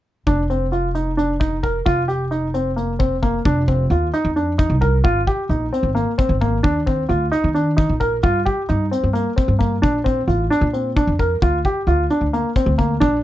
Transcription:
0.27 1.83 F1 medium
0.27 0.42 D4 medium
0.27 kick medium
0.27 closed hi-hat medium
0.50 0.65 C4 medium
0.50 closed hi-hat soft
0.72 0.87 F4 medium
0.72 closed hi-hat soft
0.95 1.10 D#4 medium
0.95 closed hi-hat medium
1.17 1.33 D4 medium
1.17 closed hi-hat medium
1.40 1.55 D#4 medium
1.40 kick medium
1.40 closed hi-hat medium
1.63 1.78 A#4 medium
1.63 kick medium
1.63 closed hi-hat soft
1.86 3.42 F1 medium
1.86 2.01 F4 medium
1.86 kick medium
1.86 closed hi-hat medium
2.08 2.24 G4 medium
2.08 closed hi-hat soft
2.31 2.46 D#4 medium
2.31 closed hi-hat soft
2.54 2.69 C4 medium
2.54 closed hi-hat medium
2.76 2.92 A#3 medium
2.76 closed hi-hat soft
2.99 3.15 C4 medium
2.99 kick medium
2.99 closed hi-hat medium
3.22 3.38 A#3 medium
3.22 kick medium
3.22 closed hi-hat soft
3.45 3.85 F1 medium
3.45 3.61 D4 medium
3.45 kick medium
3.45 closed hi-hat medium
3.68 3.83 C4 medium
3.68 kick medium
3.68 closed hi-hat soft
3.90 4.10 D#2 medium
3.90 4.06 F4 medium
3.90 closed hi-hat soft
4.13 4.29 D#4 medium
4.13 closed hi-hat medium
4.25 4.65 F2 medium
4.36 4.52 D4 medium
4.36 closed hi-hat soft
4.58 4.74 D#4 medium
4.58 kick medium
4.58 closed hi-hat medium
4.70 5.00 C2 medium
4.81 4.97 A#4 medium
4.81 kick medium
4.81 closed hi-hat soft
5.04 5.25 G#1 medium
5.04 5.20 F4 medium
5.04 kick medium
5.04 closed hi-hat medium
5.27 5.43 G4 medium
5.27 kick medium
5.27 closed hi-hat medium
5.49 5.70 A#1 medium
5.49 5.65 D#4 medium
5.49 closed hi-hat soft
5.73 5.88 C4 medium
5.73 closed hi-hat medium
5.83 6.04 G#1 medium
5.95 6.10 A#3 medium
5.95 closed hi-hat soft
6.18 6.34 C4 medium
6.18 kick medium
6.18 closed hi-hat medium
6.29 6.59 G#1 medium
6.41 6.57 A#3 medium
6.41 kick medium
6.41 closed hi-hat soft
6.63 7.04 D#2 medium
6.63 6.79 D4 medium
6.63 kick medium
6.63 closed hi-hat medium
6.86 7.02 C4 medium
6.86 kick medium
6.86 closed hi-hat medium
7.09 7.29 D2 medium
7.09 7.24 F4 medium
7.09 closed hi-hat soft
7.32 7.47 D#4 medium
7.32 closed hi-hat medium
7.44 7.84 D#3 medium
7.54 7.70 D4 medium
7.54 closed hi-hat soft
7.77 7.92 D#4 medium
7.77 kick medium
7.77 closed hi-hat medium
7.89 8.19 A#1 medium
8.00 8.16 A#4 medium
8.00 kick medium
8.00 closed hi-hat soft
8.23 8.43 G2 medium
8.23 8.39 F4 medium
8.23 kick medium
8.23 closed hi-hat medium
8.45 8.61 G4 medium
8.45 kick medium
8.45 closed hi-hat medium
8.69 8.89 G2 medium
8.69 8.84 D#4 medium
8.69 closed hi-hat soft
8.91 9.07 C4 medium
8.91 closed hi-hat medium
9.03 9.23 G2 medium
9.13 9.29 A#3 medium
9.13 closed hi-hat medium
9.36 9.52 C4 medium
9.36 kick medium
9.36 closed hi-hat medium
9.48 9.78 G2 medium
9.59 9.75 A#3 medium
9.59 kick medium
9.59 closed hi-hat soft
9.82 10.23 A#1 medium
9.82 9.98 D4 medium
9.82 kick medium
9.82 closed hi-hat medium
10.04 10.20 C4 medium
10.04 kick medium
10.04 closed hi-hat medium
10.28 10.48 A1 medium
10.28 10.43 F4 medium
10.28 closed hi-hat medium
10.50 10.66 D4 medium
10.50 closed hi-hat medium
10.61 11.02 A#2 medium
10.73 10.89 C4 medium
10.73 closed hi-hat soft
10.96 11.12 D4 medium
10.96 kick medium
10.96 closed hi-hat medium
11.07 11.37 F2 medium
11.19 11.35 A#4 medium
11.19 kick medium
11.19 closed hi-hat soft
11.42 11.62 D2 medium
11.42 11.57 F4 medium
11.42 kick medium
11.42 closed hi-hat medium
11.65 11.80 G4 medium
11.65 kick medium
11.65 closed hi-hat soft
11.87 12.07 D2 medium
11.87 12.03 F4 medium
11.87 closed hi-hat soft
12.10 12.26 D4 medium
12.10 closed hi-hat medium
12.21 12.41 D2 medium
12.33 12.49 A#3 medium
12.33 closed hi-hat soft
12.56 12.71 C4 medium
12.56 kick medium
12.56 closed hi-hat medium
12.66 12.96 D2 medium
12.78 12.94 A#3 medium
12.78 kick medium
12.78 closed hi-hat medium
13.00 13.23 A#1 medium
13.00 13.16 D4 medium
13.00 kick medium
13.00 closed hi-hat medium

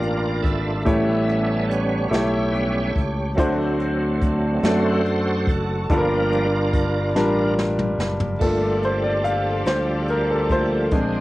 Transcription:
0.00 0.41 A1 medium
0.00 0.89 G2 medium
0.00 0.89 A#3 medium
0.00 0.84 D4 soft
0.00 0.83 F4 soft
0.00 0.89 F4 medium
0.00 0.85 G4 medium
0.00 0.47 A#4 medium
0.00 0.89 D5 medium
0.00 closed hi-hat soft
0.42 0.83 G#1 medium
0.42 1.73 A4 medium
0.42 1.66 E5 medium
0.42 kick medium
0.42 closed hi-hat medium
0.85 2.09 A1 medium
0.85 2.08 A2 medium
0.85 2.08 G3 soft
0.85 2.03 A3 medium
0.85 2.09 B3 soft
0.85 2.09 C#4 soft
0.85 2.03 E4 medium
0.85 2.03 G4 medium
0.85 2.04 C#5 medium
0.85 kick loud
0.85 closed hi-hat medium
1.29 closed hi-hat soft
1.69 2.07 C#5 medium
1.69 closed hi-hat medium
2.08 2.92 B1 medium
2.08 3.29 A3 medium
2.08 3.29 E4 soft
2.08 3.33 G4 medium
2.08 3.29 G4 medium
2.08 3.32 C#5 medium
2.08 3.01 E5 medium
2.12 3.30 C#5 medium
2.12 snare medium
2.12 closed hi-hat medium
2.52 2.91 G3 soft
2.52 2.91 B3 soft
2.52 2.92 C#4 medium
2.52 closed hi-hat soft
2.96 3.35 C#2 medium
2.96 kick medium
2.96 closed hi-hat medium
3.35 4.60 D2 medium
3.35 4.60 D3 medium
3.35 4.62 F#3 soft
3.35 4.62 A3 soft
3.35 4.55 A3 medium
3.35 4.63 C4 medium
3.35 4.56 D4 medium
3.35 4.56 F#4 medium
3.35 kick loud
3.35 closed hi-hat medium
3.39 4.56 C5 medium
3.80 closed hi-hat soft
4.22 kick medium
4.22 closed hi-hat medium
4.63 5.49 F#2 medium
4.63 5.02 F#3 soft
4.63 5.81 A3 medium
4.63 5.02 A3 soft
4.63 5.02 C4 soft
4.63 5.81 D4 medium
4.63 5.81 F#4 medium
4.63 5.86 F#4 medium
4.63 5.47 A4 medium
4.63 5.51 C5 medium
4.63 5.82 D5 medium
4.63 snare medium
4.63 closed hi-hat medium
5.06 closed hi-hat soft
5.47 5.86 F#1 medium
5.47 5.91 A4 medium
5.47 kick medium
5.47 closed hi-hat medium
5.90 7.15 G1 loud
5.90 7.12 G2 medium
5.90 6.46 F3 soft
5.90 7.07 G3 medium
5.90 6.47 G3 soft
5.90 6.47 A#3 medium
5.90 7.07 D4 medium
5.90 7.55 D4 medium
5.90 7.07 F4 medium
5.90 7.54 F4 medium
5.90 5.97 A4 medium
5.90 7.54 A#4 medium
5.90 kick loud
5.90 closed hi-hat medium
5.98 7.11 A#4 medium
6.32 closed hi-hat soft
6.73 kick medium
6.73 closed hi-hat medium
7.15 7.95 A1 medium
7.15 8.33 G3 medium
7.15 8.33 D4 medium
7.15 8.33 F4 medium
7.15 8.33 A#4 medium
7.15 snare medium
7.59 snare medium
7.79 mid tom medium
7.98 8.37 F#1 medium
7.98 snare medium
8.20 floor tom medium
8.39 9.63 G1 medium
8.39 11.21 F3 medium
8.39 10.87 G3 soft
8.39 8.47 A3 soft
8.39 10.50 A3 soft
8.39 10.51 A#3 soft
8.39 10.87 F4 soft
8.39 10.90 F4 medium
8.39 10.51 F4 soft
8.39 10.90 G4 medium
8.39 10.87 A4 medium
8.39 8.84 A4 medium
8.39 10.90 A4 medium
8.39 kick loud
8.39 crash medium
8.45 10.90 D4 soft
8.83 9.05 C5 medium
8.83 closed hi-hat soft
9.04 9.25 D5 medium
9.24 9.68 F5 medium
9.24 closed hi-hat medium
9.66 10.88 D2 medium
9.66 10.10 C5 medium
9.66 snare medium
9.66 closed hi-hat medium
10.08 10.31 A#4 medium
10.08 closed hi-hat soft
10.30 10.51 A4 medium
10.50 10.89 A3 soft
10.50 10.89 A#3 soft
10.50 10.89 F4 soft
10.50 11.21 C5 medium
10.50 kick medium
10.50 closed hi-hat soft
10.91 11.21 A#1 medium
10.91 11.21 G#3 soft
10.91 11.21 A#3 medium
10.91 11.21 C4 medium
10.91 11.21 C4 soft
10.91 10.99 C#4 soft
10.91 11.21 D4 medium
10.91 11.21 G#4 medium
10.91 11.21 G#4 soft
10.91 11.21 C5 medium
10.91 kick loud
10.91 closed hi-hat medium
10.99 11.21 D4 soft

